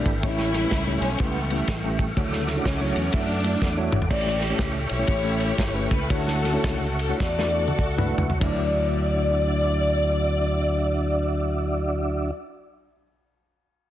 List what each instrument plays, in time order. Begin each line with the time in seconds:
Already playing: string section D3 E3, tine electric piano A3 D4 E4 G4 D5, tonewheel organ A4 E5 G5 B5
0.06 fingered electric bass G#1, kick, ride
0.23 fingered electric bass A1, tine electric piano A2 A3 C#4 E4 G4 C#5, string section G3 C#4 E4, tonewheel organ C#6, kick, ride
0.38 snare
0.53 snare, ride
0.64 tine electric piano A3 C#4 E4 G4 B4
0.71 fingered electric bass C#2, kick, snare, ride
0.87 tine electric piano A3 C#4 E4 G4 C#5
1.01 fingered electric bass B1, string section C#4, ride
1.18 fingered electric bass C#2, string section E3 G3 B3, tine electric piano A3 C#4 E4 G4 B4, kick, ride
1.50 tine electric piano A3 C#4 E4 G4 E5, ride
1.68 fingered electric bass A1, kick, snare, ride
1.84 tine electric piano A3 C#4 E4 G4 E5
1.99 string section A3, kick, ride
2.17 fingered electric bass D2, tine electric piano C#3 A3 D4 E4 F#4 C#5, string section C#3 F#3 A3, tonewheel organ A4 F#5 D6, kick, ride
2.33 snare
2.48 snare, ride
2.56 tine electric piano A3 D4 E4 F#4 C#5
2.65 fingered electric bass C#2, string section E3 F#3 C#4, kick, snare, ride
2.81 tine electric piano A3 D4 E4 F#4 C#5
2.96 fingered electric bass E2, ride
3.13 fingered electric bass F#2, string section F#3 A3 D4, tine electric piano A3 D4 E4 F#4 E5, kick, ride
3.44 tine electric piano A3 D4 E4 F#4 A4, ride
3.62 fingered electric bass E2, kick, snare
3.77 tine electric piano A3 D4 E4 F#4 C#5
3.92 fingered electric bass G#1, mid tom
4.02 floor tom
4.10 fingered electric bass A1, tine electric piano A2 A3 C#4 E4 G4 C#5, string section G4 D5, tonewheel organ A4 E5 G5 C#6, kick, crash
4.26 snare
4.41 snare, ride
4.50 tine electric piano A3 C#4 E4 G4 C#5
4.59 fingered electric bass C#2, kick, snare, ride
4.89 fingered electric bass B1, string section E4 G4 C#5, ride
4.99 tine electric piano A3 C#4 E4 G4 C#5
5.07 fingered electric bass A1, kick, ride
5.23 tine electric piano A3 C#4 E4 G4 A4
5.40 ride
5.58 fingered electric bass G1, kick, snare, ride
5.74 tine electric piano A3 C#4 E4 G4 B4
5.91 fingered electric bass C#2, string section B4, kick, ride
6.09 fingered electric bass D2, tine electric piano D3 A3 D4 E4 F#4 C#5, string section C#4 F#4 A4, tonewheel organ F#4 F#5 C#6, kick, ride
6.27 snare
6.44 snare, ride
6.53 tine electric piano A3 D4 E4 F#4 C#5
6.64 fingered electric bass C#2, kick, snare, ride
6.99 string section A4, ride
7.09 tine electric piano A3 D4 E4 F#4 C#5
7.20 fingered electric bass E2, string section F#4 A4 D5, kick, snare
7.38 tine electric piano A3 D4 E4 F#4 D5, snare
7.68 high tom
7.79 fingered electric bass C#2, kick
7.97 tine electric piano A3 D4 E4 F#4 B4, mid tom
8.18 fingered electric bass C#2, floor tom
8.30 floor tom
8.39 tine electric piano D2 F#3 D4 E4, fingered electric bass D2, tonewheel organ D4 F#4 D5 E5, string section D5, kick, floor tom, ride bell
8.43 tine electric piano D5